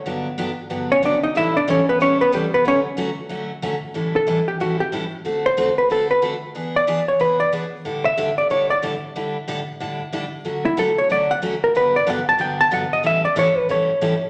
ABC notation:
X:1
M:4/4
L:1/16
Q:"Swing" 1/4=185
K:Amix
V:1 name="Hollow-body jazz guitar"
z8 z2 [Cc]2 [Dd]2 [_E_e]2 | [Ee]2 [Dd]2 [Cc]2 [B,B]2 [Cc]2 [B,B]2 [G,G]2 [B,B]2 | [Cc]2 z12 z2 | z2 A4 G2 F2 G2 z4 |
z2 =c4 B2 A2 B2 z4 | z2 d4 c2 B2 d2 z4 | z2 e4 d2 c2 d2 z4 | z16 |
z2 E2 A2 c2 d2 f2 z2 _B2 | B2 d2 f2 a2 g2 a2 f2 _e2 | e2 d2 c2 B2 c6- c z |]
V:2 name="Steel-string acoustic guitar"
[G,,D,F,B,DG]2 z2 [G,,D,F,B,DG]2 z2 [G,,D,F,B,DG]2 z2 [G,,D,F,B,DG]2 z2 | [A,,E,G,CEA]2 z2 [A,,E,G,CEA]2 z2 [A,,E,G,CEA]2 z2 [A,,E,G,CEA]2 z2 | [D,F,A,CF]2 z2 [D,F,A,CF]2 z2 [D,F,A,CF]2 z2 [D,F,A,CF]2 z2 | [A,,E,G,CEA]2 z2 [A,,E,G,CEA]2 z2 [A,,E,G,CEA]2 z2 [A,,E,G,CEA]2 z2 |
[D,A,=CFA]2 z2 [D,A,CFA]2 z2 [D,A,CFA]2 z2 [D,A,CFA]2 z2 | [E,B,D^G]2 z2 [E,B,DG]2 z2 [E,B,DG]2 z2 [E,B,DG]2 z2 | [A,,D,G,DEA]2 z2 [A,,D,G,DEA]2 z2 [A,,D,G,DEA]2 z2 [A,,D,G,DEA]2 z2 | [A,,D,G,DEA]2 z2 [A,,D,G,DEA]2 z2 [A,,D,G,DEA]2 z2 [A,,D,G,DEA]2 z2 |
[D,F,A,CF]2 z2 [D,F,A,CF]2 z2 [D,F,A,CF]2 z2 [D,F,A,CF]2 z2 | [G,,D,F,B,DG]2 z2 [G,,D,F,B,DG]2 z2 [G,,D,F,B,DG]2 z2 [G,,D,F,B,DG]2 z2 | [A,,E,G,CEA]2 z2 [A,,E,G,CEA]2 z2 [A,,E,G,CEA]2 z2 [A,,E,G,CEA]2 z2 |]